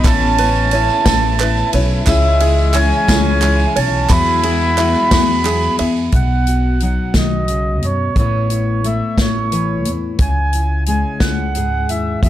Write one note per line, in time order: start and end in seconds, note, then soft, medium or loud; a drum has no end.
0.00 0.38 A3 medium
0.00 2.03 B3 medium
0.04 0.88 A1 loud
0.04 2.05 C#3 medium
0.04 2.05 A3 medium
0.04 0.38 C#4 medium
0.04 1.70 C#4 medium
0.04 4.06 E4 medium
0.04 0.38 E4 medium
0.04 1.05 A4 medium
0.04 0.37 B4 medium
0.04 1.70 A5 loud
0.04 kick loud
0.04 clap medium
0.04 ride medium
0.04 tambourine medium
0.38 0.72 C#4 soft
0.38 0.73 E4 soft
0.38 0.72 B4 medium
0.38 1.39 B4 medium
0.38 ride medium
0.56 tambourine soft
0.71 1.06 A3 medium
0.71 1.06 C#4 medium
0.71 1.05 E4 medium
0.71 1.05 B4 medium
0.71 1.73 C#5 medium
0.71 ride medium
0.89 clap soft
0.89 tambourine soft
1.05 1.61 A1 loud
1.05 1.38 A3 medium
1.05 1.40 C#4 medium
1.05 1.40 E4 medium
1.05 2.07 A4 medium
1.05 1.40 B4 medium
1.05 kick medium
1.05 snare loud
1.05 ride medium
1.05 tambourine loud
1.39 1.73 A3 medium
1.39 1.74 C#4 medium
1.39 1.73 E4 medium
1.39 2.08 B4 medium
1.39 1.71 B4 medium
1.39 clap medium
1.39 ride medium
1.57 tambourine soft
1.73 2.01 B1 medium
1.73 2.07 C#4 medium
1.73 2.08 E4 medium
1.73 2.07 B4 medium
1.73 2.08 C#5 medium
1.73 ride medium
2.07 2.90 C#2 loud
2.07 2.41 C#3 medium
2.07 4.08 C#3 medium
2.07 6.09 E3 medium
2.07 2.71 G#3 medium
2.07 4.08 G#3 medium
2.07 2.41 G#3 medium
2.07 2.41 C#4 medium
2.07 3.07 E4 medium
2.07 2.40 E4 medium
2.07 2.39 G#4 medium
2.07 2.77 E5 loud
2.07 kick loud
2.07 clap medium
2.07 ride medium
2.07 tambourine medium
2.40 2.74 C#4 soft
2.40 2.75 E4 soft
2.40 2.74 G#4 medium
2.40 3.76 G#4 medium
2.40 ride medium
2.58 tambourine soft
2.74 3.08 G#3 medium
2.74 3.72 C#4 loud
2.74 3.08 C#4 medium
2.74 3.07 E4 medium
2.74 3.07 G#4 medium
2.74 3.75 C#5 medium
2.74 3.79 G#5 loud
2.74 clap loud
2.74 ride medium
2.91 clap soft
2.91 tambourine soft
3.08 3.64 C#2 medium
3.08 3.43 C#3 medium
3.08 3.40 G#3 medium
3.08 3.41 C#4 medium
3.08 4.09 E4 medium
3.08 3.42 E4 medium
3.08 3.42 G#4 medium
3.08 kick medium
3.08 snare loud
3.08 ride medium
3.08 tambourine loud
3.41 3.76 G#3 medium
3.41 4.10 G#3 medium
3.41 3.76 C#4 medium
3.41 3.75 E4 medium
3.41 3.77 G#4 medium
3.41 clap loud
3.41 ride medium
3.59 tambourine soft
3.76 4.04 B1 medium
3.76 4.10 C#4 soft
3.76 4.08 C#4 medium
3.76 4.09 E4 medium
3.76 4.10 C#5 medium
3.76 4.11 A5 medium
3.76 ride medium
4.10 4.93 E2 loud
4.10 4.44 E3 medium
4.10 4.44 F#3 medium
4.10 6.11 G#3 medium
4.10 6.11 B3 medium
4.10 4.44 B3 medium
4.10 5.75 E4 loud
4.10 4.44 E4 medium
4.10 5.10 F#4 medium
4.10 6.11 F#4 medium
4.10 4.42 G#4 medium
4.10 5.76 B5 loud
4.10 kick loud
4.10 clap loud
4.10 ride medium
4.10 tambourine medium
4.27 clap soft
4.43 4.77 B3 soft
4.43 4.78 E4 medium
4.43 4.78 G#4 medium
4.43 5.44 G#4 medium
4.43 ride medium
4.61 tambourine soft
4.78 5.12 F#3 medium
4.78 5.11 B3 medium
4.78 5.11 E4 medium
4.78 5.10 G#4 medium
4.78 5.78 E5 medium
4.78 clap medium
4.78 ride medium
4.95 clap soft
4.95 tambourine soft
5.11 5.67 E2 medium
5.11 5.46 E3 medium
5.11 5.43 F#3 medium
5.11 5.44 B3 medium
5.11 5.45 E4 medium
5.11 6.13 F#4 medium
5.11 5.45 G#4 medium
5.11 kick medium
5.11 snare loud
5.11 ride medium
5.11 tambourine medium
5.44 5.79 F#3 medium
5.44 5.79 B3 medium
5.44 5.78 E4 medium
5.44 6.13 G#4 medium
5.44 5.78 G#4 medium
5.44 clap medium
5.44 ride medium
5.44 tambourine soft
5.62 tambourine soft
5.79 6.07 E2 medium
5.79 6.14 B3 medium
5.79 6.13 E4 medium
5.79 6.13 G#4 medium
5.79 6.13 E5 medium
5.79 clap soft
5.79 ride medium
5.96 tambourine soft
6.12 6.96 B1 medium
6.12 7.82 B2 medium
6.12 6.82 F#5 medium
6.12 kick medium
6.12 closed hi-hat medium
6.47 8.13 F#4 soft
6.47 closed hi-hat soft
6.80 8.17 F#3 medium
6.80 8.13 D#4 medium
6.80 7.14 F#5 medium
6.80 closed hi-hat soft
7.14 7.84 B1 medium
7.14 7.49 D#3 medium
7.14 7.86 D#5 medium
7.14 kick medium
7.14 snare medium
7.14 closed hi-hat medium
7.48 7.83 C#3 soft
7.48 closed hi-hat soft
7.82 8.11 F#2 medium
7.82 8.17 B2 soft
7.82 8.16 C#5 medium
7.82 closed hi-hat soft
8.16 9.00 A1 medium
8.16 10.16 A2 medium
8.16 8.83 A3 medium
8.16 8.84 B3 medium
8.16 8.51 E4 medium
8.16 8.87 C#5 medium
8.16 kick medium
8.16 closed hi-hat medium
8.20 9.51 B4 medium
8.50 9.19 E4 soft
8.50 closed hi-hat soft
8.84 10.16 A3 medium
8.84 10.20 B3 soft
8.84 9.19 E5 medium
8.84 closed hi-hat soft
9.18 9.85 A1 medium
9.18 9.87 E4 medium
9.18 9.91 C#5 medium
9.18 kick medium
9.18 snare loud
9.18 closed hi-hat medium
9.52 10.20 E3 medium
9.52 10.16 B4 medium
9.52 closed hi-hat medium
9.85 10.13 E2 medium
9.85 10.54 E4 soft
9.85 closed hi-hat medium
10.19 11.03 C#2 medium
10.19 11.55 C#3 medium
10.19 10.84 G#5 medium
10.19 kick medium
10.19 closed hi-hat medium
10.53 11.22 E4 soft
10.53 closed hi-hat soft
10.86 12.19 G#3 medium
10.86 12.19 C#4 soft
10.86 11.23 G#5 medium
10.86 closed hi-hat soft
11.20 11.88 C#2 medium
11.20 11.89 E4 medium
11.20 11.91 F#5 medium
11.20 kick medium
11.20 snare medium
11.20 closed hi-hat medium
11.55 12.23 G#2 medium
11.55 12.23 G#4 medium
11.55 closed hi-hat soft
11.88 12.16 D#2 medium
11.88 12.19 E4 soft
11.88 12.21 E5 medium
11.88 closed hi-hat soft
12.23 12.29 E2 medium
12.23 12.29 E3 medium
12.23 12.29 G#3 medium
12.23 12.29 B3 soft
12.23 12.29 F#4 medium
12.23 12.29 E5 medium
12.23 kick medium
12.23 closed hi-hat medium